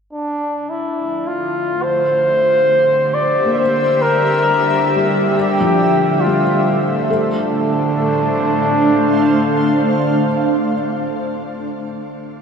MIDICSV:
0, 0, Header, 1, 5, 480
1, 0, Start_track
1, 0, Key_signature, -1, "minor"
1, 0, Tempo, 869565
1, 70, Time_signature, 4, 2, 24, 8
1, 6855, End_track
2, 0, Start_track
2, 0, Title_t, "Ambient pad"
2, 0, Program_c, 0, 92
2, 69, Note_on_c, 0, 57, 85
2, 401, Note_on_c, 0, 72, 89
2, 416, Note_on_c, 0, 53, 77
2, 497, Note_on_c, 0, 74, 66
2, 1029, Note_off_c, 0, 57, 0
2, 1031, Note_off_c, 0, 53, 0
2, 1090, Note_on_c, 0, 67, 65
2, 1175, Note_on_c, 0, 76, 84
2, 1413, Note_off_c, 0, 74, 0
2, 2081, Note_on_c, 0, 74, 84
2, 2378, Note_off_c, 0, 72, 0
2, 2937, Note_on_c, 0, 57, 71
2, 3270, Note_on_c, 0, 72, 66
2, 3330, Note_off_c, 0, 74, 0
2, 3332, Note_off_c, 0, 67, 0
2, 3895, Note_off_c, 0, 57, 0
2, 3901, Note_on_c, 0, 57, 68
2, 3907, Note_off_c, 0, 76, 0
2, 3908, Note_off_c, 0, 72, 0
2, 3985, Note_on_c, 0, 62, 71
2, 4069, Note_on_c, 0, 72, 66
2, 4139, Note_on_c, 0, 77, 63
2, 5902, Note_off_c, 0, 57, 0
2, 5985, Note_off_c, 0, 62, 0
2, 6070, Note_off_c, 0, 72, 0
2, 6140, Note_off_c, 0, 77, 0
2, 6855, End_track
3, 0, Start_track
3, 0, Title_t, "Flugelhorn"
3, 0, Program_c, 1, 56
3, 73, Note_on_c, 1, 62, 75
3, 385, Note_on_c, 1, 64, 69
3, 393, Note_off_c, 1, 62, 0
3, 701, Note_on_c, 1, 65, 77
3, 710, Note_off_c, 1, 64, 0
3, 1010, Note_on_c, 1, 72, 100
3, 1019, Note_off_c, 1, 65, 0
3, 1735, Note_on_c, 1, 74, 80
3, 1743, Note_off_c, 1, 72, 0
3, 1944, Note_off_c, 1, 74, 0
3, 1953, Note_on_c, 1, 74, 63
3, 1978, Note_on_c, 1, 72, 103
3, 1986, Note_off_c, 1, 74, 0
3, 2220, Note_on_c, 1, 70, 97
3, 2228, Note_off_c, 1, 72, 0
3, 2796, Note_off_c, 1, 70, 0
3, 2947, Note_on_c, 1, 67, 93
3, 3428, Note_on_c, 1, 65, 78
3, 3436, Note_off_c, 1, 67, 0
3, 3789, Note_off_c, 1, 65, 0
3, 3911, Note_on_c, 1, 62, 86
3, 5911, Note_off_c, 1, 62, 0
3, 6855, End_track
4, 0, Start_track
4, 0, Title_t, "Felt piano"
4, 0, Program_c, 2, 0
4, 1119, Control_c, 2, 64, 127
4, 1906, Note_on_c, 2, 58, 59
4, 1997, Control_c, 2, 64, 0
4, 2103, Control_c, 2, 64, 127
4, 2738, Note_on_c, 2, 55, 48
4, 2957, Note_off_c, 2, 58, 0
4, 2957, Control_c, 2, 64, 0
4, 3067, Control_c, 2, 64, 127
4, 3094, Note_on_c, 2, 53, 45
4, 3190, Note_off_c, 2, 55, 0
4, 3459, Note_on_c, 2, 55, 48
4, 3548, Note_off_c, 2, 53, 0
4, 3917, Control_c, 2, 64, 0
4, 3919, Note_on_c, 2, 69, 49
4, 4022, Control_c, 2, 64, 127
4, 5659, Note_off_c, 2, 55, 0
4, 5919, Note_off_c, 2, 69, 0
4, 6855, End_track
5, 0, Start_track
5, 0, Title_t, "Synth drone"
5, 0, Program_c, 3, 95
5, 73, Note_on_c, 3, 50, 56
5, 3903, Note_off_c, 3, 50, 0
5, 3910, Note_on_c, 3, 50, 72
5, 5910, Note_off_c, 3, 50, 0
5, 6855, End_track
0, 0, End_of_file